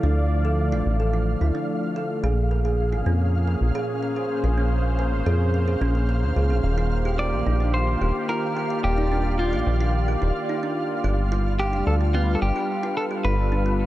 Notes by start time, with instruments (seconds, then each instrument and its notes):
Already playing: analog synth pad D3 F3 A3 D5 F5, synth texture F5
0.03 acid bass D2, kalimba D4
0.45 kalimba A4
0.72 acid bass A1, kalimba F4
0.86 acid bass A1
1.00 kalimba A4
1.13 kalimba F4
1.41 acid bass D2, kalimba E4
1.55 kalimba D4
1.96 kalimba A4
2.23 acid bass A#1, analog synth pad A#2, kalimba G#4
2.51 kalimba A#4
2.55 analog synth pad G#4
2.65 kalimba G#4
2.89 acid bass G#1, analog synth pad A#3, kalimba F4
2.93 analog synth pad C#4
3.06 acid bass F2, kalimba C#4
3.47 kalimba A#4
3.61 acid bass A#1
3.75 kalimba G#4
4.03 kalimba A#4
4.10 analog synth pad C5
4.16 kalimba G#4
4.44 acid bass A#1, kalimba F4
4.58 kalimba C#4
4.99 kalimba A#4
5.13 acid bass G#1
5.26 acid bass F2, kalimba G#4
5.54 kalimba A#4
5.68 kalimba G#4
5.81 acid bass A#1, kalimba C#4
5.95 kalimba A#4
6.09 kalimba A#4
6.23 acid bass D#2
6.36 acid bass C#2, kalimba G#4
6.50 acid bass A#1, kalimba G#4
6.64 acid bass D#1, analog synth pad D#3
6.78 kalimba F4
6.94 analog synth pad G4
7.05 kalimba G4
7.19 kalimba F4, clean electric guitar D5
7.33 acid bass A#1
7.46 acid bass A#1, kalimba D#4
7.60 kalimba D4
7.71 analog synth pad F4, clean electric guitar C5
8.01 acid bass D#1, kalimba G4
8.29 kalimba F4, clean electric guitar A#4
8.57 kalimba G4
8.62 analog synth pad D5
8.70 kalimba F4
8.84 acid bass D#1, clean electric guitar G4
8.98 kalimba D#4
9.12 kalimba D4
9.39 clean electric guitar F4
9.53 acid bass A#1, kalimba G4
9.67 acid bass A#1
9.80 kalimba F4
10.08 kalimba G4
10.22 acid bass D#1, kalimba F4
10.49 kalimba D#4
10.63 kalimba D4
11.04 acid bass G1, analog synth pad G3, kalimba G4
11.32 kalimba F4
11.59 kalimba G4, clean electric guitar G4
11.63 analog synth pad D4
11.73 acid bass F1, kalimba F4
11.87 acid bass D2, clean electric guitar A4
12.01 kalimba D4
12.07 analog synth pad B4
12.14 kalimba B3, clean electric guitar F4
12.35 clean electric guitar A4
12.42 acid bass G1, clean electric guitar G4
12.56 kalimba G4
12.83 kalimba F4
12.97 clean electric guitar A4
13.02 analog synth pad A4
13.11 kalimba G4
13.24 acid bass G1, kalimba F4, clean electric guitar B4
13.52 kalimba D4
13.66 kalimba B3